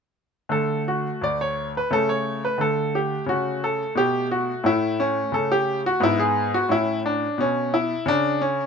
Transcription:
0.49 1.06 D3 soft
0.49 1.86 A3 soft
0.49 0.81 A4 medium
0.88 1.22 F#4 medium
1.21 1.77 D2 soft
1.21 1.39 D5 medium
1.41 1.69 C#5 medium
1.77 1.92 B4 medium
1.91 2.45 C#3 soft
1.91 2.55 A3 soft
1.91 2.09 A4 medium
2.09 2.43 C#5 medium
2.45 2.60 B4 medium
2.58 3.13 D3 soft
2.58 4.60 A3 soft
2.58 2.94 A4 medium
2.95 3.24 G4 medium
3.26 3.81 C#3 medium
3.26 3.63 F#4 medium
3.64 3.92 A4 medium
3.95 4.50 B2 medium
3.95 4.26 G4 medium
4.31 4.65 F#4 medium
4.64 5.19 A2 medium
4.64 5.96 A3 soft
4.64 4.99 E4 medium
5.00 5.33 C#4 medium
5.32 5.86 C#3 medium
5.32 5.50 A4 medium
5.52 5.79 G4 medium
5.86 6.02 F#4 medium
6.00 6.54 G#2 medium
6.00 6.64 B3 soft
6.00 6.19 E4 medium
6.19 6.52 G#4 medium
6.54 6.70 F#4 medium
6.69 7.23 A2 medium
6.69 7.39 C#4 soft
6.69 6.99 E4 medium
7.06 7.38 D4 medium
7.38 7.92 B2 medium
7.38 7.73 C#4 medium
7.74 8.06 E4 medium
8.06 8.60 C#3 medium
8.06 8.40 D4 medium
8.42 8.66 C#4 medium

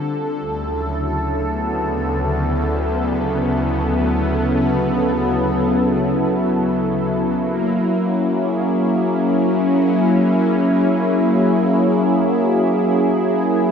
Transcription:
0.00 0.40 D3 medium
0.00 0.40 G3 medium
0.00 0.39 C4 medium
0.00 0.40 F4 medium
0.00 7.36 A4 medium
0.40 7.35 D2 medium
0.54 7.35 C#3 medium
0.62 13.71 F#3 medium
0.67 13.71 E4 medium
1.50 7.34 B3 medium
7.41 13.71 A#3 medium
8.01 13.71 C#4 medium
8.38 13.71 G#4 medium

